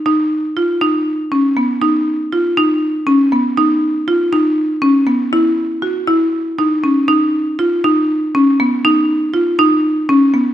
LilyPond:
\new Staff \with { instrumentName = "Marimba" } { \time 7/8 \key dis \minor \tempo 4 = 120 dis'4 eis'8 dis'4 cis'8 b8 | dis'4 eis'8 dis'4 cis'8 b8 | dis'4 eis'8 dis'4 cis'8 b8 | e'4 fis'8 e'4 dis'8 cis'8 |
dis'4 eis'8 dis'4 cis'8 b8 | dis'4 eis'8 dis'4 cis'8 b8 | }